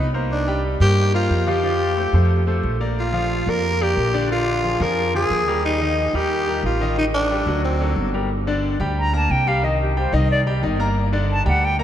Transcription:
Already playing: C2 D#4
0.14 A#3 A#4 C5
0.32 D4
0.47 G3 G4 G5
0.80 G2 A#3 G4 A#4 C5
1.14 A#3 F4 A#4 C5
1.30 F2
1.47 F3 F4 G4 F5
1.63 F3 F4 F5
1.97 A3 A4 C5
2.13 F2 A3 A4 C5
2.47 A3 A4 C5
2.63 A#1
2.80 A#3 A#4 D5
2.99 F4
3.13 F3 F4 F5
3.46 F2 A#3 A#4 D5
3.81 A#3 G4 A#4 D5
3.97 A#1
4.14 D3 D4 D5
4.30 D3 D4 F4 D5
4.64 F3 F4 G#4
4.80 F2 F3 F4 G#4 A#4
5.14 F3 F4 G#4
5.30 D#2
5.48 G3 G4 A#4
5.65 D#4
5.81 D#3 D#4 D#5
6.14 D#2 G3 G4 A#4
6.48 G3 G4 A#4
6.63 A1 F4
6.81 D#3 D#4 D#5
6.97 D#3 D#4 D#5
7.14 D4
7.30 G3 G4 A4
7.46 D2 F#3 F#4 A4
7.64 C4
7.80 F#3 F#4 A4
7.96 G1
8.14 G3 G4 A#4
8.47 D3 D4 D5
8.80 D2 G3 G4 G5
8.99 A#5
9.13 A#3 A#4 A5 A#5
9.30 C2 G5
9.47 G3 G4 F5 G5
9.63 D#3 D#4 D#5
9.82 G4
9.97 G3 G4 C5 G5
10.13 C2 D#3 D#4 D#5
10.31 D5
10.46 G3 G4 G5
10.63 G1 D#3 D#4 D#5
10.79 A#3 A#4 A#5
11.13 D3 D4 D5
11.32 A5
11.45 D2 G3 G4 F#5 G5
11.65 G5
11.79 A#3 A#4 A#5

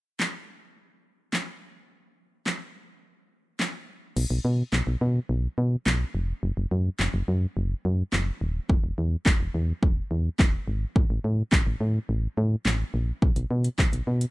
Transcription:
0.20 snare, clap
1.33 snare, clap
2.46 snare, clap
3.60 snare, clap
4.17 B1, crash
4.30 B1
4.45 B2
4.72 B1, snare, clap
4.87 B1
5.01 B2
5.29 B1
5.58 B2
5.86 B1, snare, clap
6.15 F1
6.43 F#1
6.57 F#1
6.71 F#2
6.99 F#1, snare, clap
7.14 F#1
7.28 F#2
7.57 F#1
7.85 F#2
8.12 F#1, snare, clap
8.41 D#1
8.69 E1, kick
8.84 E1
8.98 E2
9.25 E1, kick, snare, clap
9.40 E1
9.54 E2
9.83 E1, kick
10.11 E2
10.39 E1, kick, snare, clap
10.68 G#1
10.96 A1, kick
11.10 A1
11.24 A2
11.52 A1, kick, snare, clap
11.67 A1
11.81 A2
12.09 A1
12.38 A2
12.65 A1, snare, clap
12.94 A#1
13.22 B1, kick
13.36 B1, closed hi-hat
13.51 B2
13.64 closed hi-hat
13.78 B1, kick, snare, clap
13.93 B1, closed hi-hat
14.07 B2
14.21 closed hi-hat

